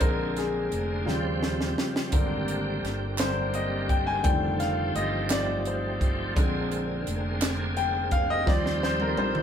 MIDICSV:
0, 0, Header, 1, 5, 480
1, 0, Start_track
1, 0, Key_signature, -3, "major"
1, 0, Tempo, 705053
1, 9, Time_signature, 6, 3, 24, 8
1, 6417, End_track
2, 0, Start_track
2, 0, Title_t, "Grand piano"
2, 0, Program_c, 0, 0
2, 0, Control_c, 0, 64, 127
2, 0, Note_on_c, 0, 50, 53
2, 0, Note_on_c, 0, 56, 47
2, 6, Note_on_c, 0, 70, 82
2, 7, Note_on_c, 0, 60, 53
2, 18, Control_c, 0, 64, 0
2, 121, Control_c, 0, 64, 127
2, 231, Note_off_c, 0, 70, 0
2, 258, Note_on_c, 0, 68, 63
2, 311, Note_off_c, 0, 68, 0
2, 696, Note_off_c, 0, 50, 0
2, 697, Note_off_c, 0, 56, 0
2, 701, Note_off_c, 0, 60, 0
2, 717, Note_on_c, 0, 53, 46
2, 718, Note_on_c, 0, 49, 48
2, 721, Note_on_c, 0, 55, 45
2, 725, Note_on_c, 0, 60, 55
2, 739, Control_c, 0, 64, 0
2, 879, Control_c, 0, 64, 127
2, 1416, Note_off_c, 0, 53, 0
2, 1417, Note_off_c, 0, 49, 0
2, 1418, Note_off_c, 0, 55, 0
2, 1420, Note_off_c, 0, 60, 0
2, 1441, Note_on_c, 0, 50, 50
2, 1444, Note_on_c, 0, 55, 47
2, 1449, Note_on_c, 0, 58, 49
2, 1451, Note_on_c, 0, 60, 58
2, 1456, Control_c, 0, 64, 0
2, 1570, Control_c, 0, 64, 127
2, 1764, Note_off_c, 0, 50, 0
2, 1766, Note_off_c, 0, 55, 0
2, 1768, Note_off_c, 0, 58, 0
2, 1770, Note_off_c, 0, 60, 0
2, 2172, Note_on_c, 0, 50, 45
2, 2176, Note_on_c, 0, 72, 81
2, 2177, Note_on_c, 0, 55, 39
2, 2179, Note_on_c, 0, 58, 43
2, 2179, Note_on_c, 0, 60, 48
2, 2387, Note_off_c, 0, 50, 0
2, 2389, Note_off_c, 0, 55, 0
2, 2391, Note_off_c, 0, 58, 0
2, 2391, Note_off_c, 0, 60, 0
2, 2415, Note_on_c, 0, 75, 75
2, 2420, Note_off_c, 0, 72, 0
2, 2651, Note_on_c, 0, 79, 86
2, 2660, Note_off_c, 0, 75, 0
2, 2762, Note_off_c, 0, 79, 0
2, 2769, Note_on_c, 0, 80, 94
2, 2880, Note_on_c, 0, 51, 54
2, 2885, Note_on_c, 0, 55, 50
2, 2885, Note_on_c, 0, 79, 99
2, 2888, Note_on_c, 0, 57, 50
2, 2889, Note_on_c, 0, 50, 60
2, 2893, Note_off_c, 0, 80, 0
2, 2897, Control_c, 0, 64, 0
2, 3020, Control_c, 0, 64, 127
2, 3110, Note_off_c, 0, 79, 0
2, 3130, Note_on_c, 0, 77, 83
2, 3353, Note_off_c, 0, 77, 0
2, 3374, Note_on_c, 0, 75, 88
2, 3578, Note_off_c, 0, 51, 0
2, 3580, Note_off_c, 0, 55, 0
2, 3582, Note_off_c, 0, 57, 0
2, 3583, Note_off_c, 0, 50, 0
2, 3596, Note_off_c, 0, 75, 0
2, 3622, Note_on_c, 0, 74, 91
2, 3840, Note_off_c, 0, 74, 0
2, 3862, Note_on_c, 0, 72, 58
2, 3915, Note_off_c, 0, 72, 0
2, 4328, Note_on_c, 0, 50, 53
2, 4330, Note_on_c, 0, 56, 48
2, 4334, Note_on_c, 0, 60, 65
2, 4339, Control_c, 0, 64, 0
2, 4441, Control_c, 0, 64, 127
2, 5022, Note_off_c, 0, 50, 0
2, 5023, Note_off_c, 0, 56, 0
2, 5025, Note_off_c, 0, 60, 0
2, 5289, Note_on_c, 0, 79, 96
2, 5529, Note_on_c, 0, 77, 102
2, 5537, Note_off_c, 0, 79, 0
2, 5563, Note_off_c, 0, 77, 0
2, 5652, Note_on_c, 0, 75, 104
2, 5762, Note_on_c, 0, 53, 58
2, 5762, Note_on_c, 0, 55, 52
2, 5769, Note_on_c, 0, 60, 64
2, 5774, Note_on_c, 0, 74, 100
2, 5775, Note_off_c, 0, 75, 0
2, 5779, Control_c, 0, 64, 0
2, 5905, Control_c, 0, 64, 127
2, 6014, Note_on_c, 0, 72, 84
2, 6019, Note_off_c, 0, 74, 0
2, 6135, Note_off_c, 0, 72, 0
2, 6139, Note_on_c, 0, 70, 80
2, 6251, Note_on_c, 0, 72, 92
2, 6258, Note_off_c, 0, 70, 0
2, 6417, Note_off_c, 0, 53, 0
2, 6417, Note_off_c, 0, 55, 0
2, 6417, Note_off_c, 0, 60, 0
2, 6417, Note_off_c, 0, 72, 0
2, 6417, End_track
3, 0, Start_track
3, 0, Title_t, "Tonewheel organ"
3, 0, Program_c, 1, 16
3, 0, Note_on_c, 1, 50, 62
3, 0, Note_on_c, 1, 60, 53
3, 0, Note_on_c, 1, 68, 71
3, 2, Note_on_c, 1, 58, 60
3, 715, Note_off_c, 1, 50, 0
3, 717, Note_off_c, 1, 68, 0
3, 718, Note_off_c, 1, 58, 0
3, 728, Note_on_c, 1, 49, 54
3, 728, Note_on_c, 1, 53, 57
3, 731, Note_on_c, 1, 67, 65
3, 1425, Note_off_c, 1, 60, 0
3, 1438, Note_on_c, 1, 58, 47
3, 1441, Note_on_c, 1, 50, 59
3, 1441, Note_on_c, 1, 60, 56
3, 1442, Note_off_c, 1, 49, 0
3, 1442, Note_off_c, 1, 53, 0
3, 2870, Note_off_c, 1, 58, 0
3, 2871, Note_off_c, 1, 50, 0
3, 2871, Note_off_c, 1, 60, 0
3, 2892, Note_on_c, 1, 60, 54
3, 2894, Note_on_c, 1, 53, 62
3, 2898, Note_on_c, 1, 57, 55
3, 4304, Note_off_c, 1, 67, 0
3, 4317, Note_off_c, 1, 60, 0
3, 4318, Note_off_c, 1, 53, 0
3, 4320, Note_off_c, 1, 57, 0
3, 4327, Note_on_c, 1, 50, 61
3, 4329, Note_on_c, 1, 68, 73
3, 4330, Note_on_c, 1, 58, 56
3, 4330, Note_on_c, 1, 60, 56
3, 5754, Note_off_c, 1, 50, 0
3, 5755, Note_off_c, 1, 58, 0
3, 5755, Note_off_c, 1, 68, 0
3, 5765, Note_on_c, 1, 67, 80
3, 5766, Note_on_c, 1, 53, 64
3, 5769, Note_on_c, 1, 63, 65
3, 6417, Note_off_c, 1, 53, 0
3, 6417, Note_off_c, 1, 60, 0
3, 6417, Note_off_c, 1, 63, 0
3, 6417, Note_off_c, 1, 67, 0
3, 6417, End_track
4, 0, Start_track
4, 0, Title_t, "Fingered electric bass"
4, 0, Program_c, 2, 33
4, 12, Note_on_c, 2, 34, 88
4, 463, Note_off_c, 2, 34, 0
4, 491, Note_on_c, 2, 29, 76
4, 711, Note_off_c, 2, 29, 0
4, 731, Note_on_c, 2, 39, 94
4, 1183, Note_off_c, 2, 39, 0
4, 1452, Note_on_c, 2, 32, 82
4, 1904, Note_off_c, 2, 32, 0
4, 1929, Note_on_c, 2, 31, 83
4, 2862, Note_off_c, 2, 31, 0
4, 2893, Note_on_c, 2, 29, 106
4, 3344, Note_off_c, 2, 29, 0
4, 3374, Note_on_c, 2, 31, 75
4, 4305, Note_off_c, 2, 31, 0
4, 4335, Note_on_c, 2, 34, 100
4, 4785, Note_off_c, 2, 34, 0
4, 4814, Note_on_c, 2, 29, 85
4, 5745, Note_off_c, 2, 29, 0
4, 5767, Note_on_c, 2, 39, 108
4, 6221, Note_off_c, 2, 39, 0
4, 6245, Note_on_c, 2, 34, 91
4, 6417, Note_off_c, 2, 34, 0
4, 6417, End_track
5, 0, Start_track
5, 0, Title_t, "Drums"
5, 4, Note_on_c, 9, 42, 86
5, 7, Note_on_c, 9, 36, 101
5, 72, Note_off_c, 9, 42, 0
5, 76, Note_off_c, 9, 36, 0
5, 249, Note_on_c, 9, 42, 51
5, 259, Note_on_c, 9, 38, 31
5, 317, Note_off_c, 9, 42, 0
5, 328, Note_off_c, 9, 38, 0
5, 489, Note_on_c, 9, 42, 48
5, 557, Note_off_c, 9, 42, 0
5, 734, Note_on_c, 9, 38, 55
5, 802, Note_off_c, 9, 38, 0
5, 971, Note_on_c, 9, 38, 74
5, 1039, Note_off_c, 9, 38, 0
5, 1093, Note_on_c, 9, 38, 63
5, 1161, Note_off_c, 9, 38, 0
5, 1213, Note_on_c, 9, 38, 86
5, 1281, Note_off_c, 9, 38, 0
5, 1334, Note_on_c, 9, 38, 89
5, 1402, Note_off_c, 9, 38, 0
5, 1444, Note_on_c, 9, 42, 90
5, 1448, Note_on_c, 9, 36, 104
5, 1512, Note_off_c, 9, 42, 0
5, 1516, Note_off_c, 9, 36, 0
5, 1689, Note_on_c, 9, 42, 52
5, 1757, Note_off_c, 9, 42, 0
5, 1938, Note_on_c, 9, 42, 47
5, 1943, Note_on_c, 9, 38, 30
5, 2006, Note_off_c, 9, 42, 0
5, 2011, Note_off_c, 9, 38, 0
5, 2166, Note_on_c, 9, 39, 98
5, 2168, Note_on_c, 9, 42, 89
5, 2176, Note_on_c, 9, 38, 99
5, 2234, Note_off_c, 9, 39, 0
5, 2236, Note_off_c, 9, 42, 0
5, 2244, Note_off_c, 9, 38, 0
5, 2408, Note_on_c, 9, 42, 46
5, 2476, Note_off_c, 9, 42, 0
5, 2651, Note_on_c, 9, 36, 77
5, 2654, Note_on_c, 9, 42, 41
5, 2719, Note_off_c, 9, 36, 0
5, 2722, Note_off_c, 9, 42, 0
5, 2887, Note_on_c, 9, 42, 89
5, 2891, Note_on_c, 9, 36, 112
5, 2955, Note_off_c, 9, 42, 0
5, 2960, Note_off_c, 9, 36, 0
5, 3131, Note_on_c, 9, 42, 55
5, 3142, Note_on_c, 9, 38, 31
5, 3199, Note_off_c, 9, 42, 0
5, 3210, Note_off_c, 9, 38, 0
5, 3374, Note_on_c, 9, 42, 52
5, 3442, Note_off_c, 9, 42, 0
5, 3604, Note_on_c, 9, 42, 82
5, 3608, Note_on_c, 9, 39, 105
5, 3612, Note_on_c, 9, 38, 93
5, 3672, Note_off_c, 9, 42, 0
5, 3676, Note_off_c, 9, 39, 0
5, 3680, Note_off_c, 9, 38, 0
5, 3850, Note_on_c, 9, 42, 44
5, 3918, Note_off_c, 9, 42, 0
5, 4092, Note_on_c, 9, 36, 77
5, 4095, Note_on_c, 9, 42, 44
5, 4160, Note_off_c, 9, 36, 0
5, 4163, Note_off_c, 9, 42, 0
5, 4333, Note_on_c, 9, 42, 81
5, 4334, Note_on_c, 9, 36, 108
5, 4402, Note_off_c, 9, 36, 0
5, 4402, Note_off_c, 9, 42, 0
5, 4572, Note_on_c, 9, 42, 51
5, 4640, Note_off_c, 9, 42, 0
5, 4813, Note_on_c, 9, 42, 49
5, 4881, Note_off_c, 9, 42, 0
5, 5044, Note_on_c, 9, 42, 90
5, 5051, Note_on_c, 9, 39, 111
5, 5052, Note_on_c, 9, 38, 106
5, 5112, Note_off_c, 9, 42, 0
5, 5119, Note_off_c, 9, 39, 0
5, 5120, Note_off_c, 9, 38, 0
5, 5287, Note_on_c, 9, 42, 47
5, 5355, Note_off_c, 9, 42, 0
5, 5523, Note_on_c, 9, 42, 50
5, 5526, Note_on_c, 9, 36, 72
5, 5592, Note_off_c, 9, 42, 0
5, 5595, Note_off_c, 9, 36, 0
5, 5768, Note_on_c, 9, 36, 111
5, 5773, Note_on_c, 9, 38, 54
5, 5836, Note_off_c, 9, 36, 0
5, 5841, Note_off_c, 9, 38, 0
5, 5895, Note_on_c, 9, 38, 44
5, 5963, Note_off_c, 9, 38, 0
5, 6014, Note_on_c, 9, 38, 66
5, 6082, Note_off_c, 9, 38, 0
5, 6126, Note_on_c, 9, 48, 56
5, 6194, Note_off_c, 9, 48, 0
5, 6246, Note_on_c, 9, 48, 75
5, 6314, Note_off_c, 9, 48, 0
5, 6365, Note_on_c, 9, 47, 72
5, 6417, Note_off_c, 9, 47, 0
5, 6417, End_track
0, 0, End_of_file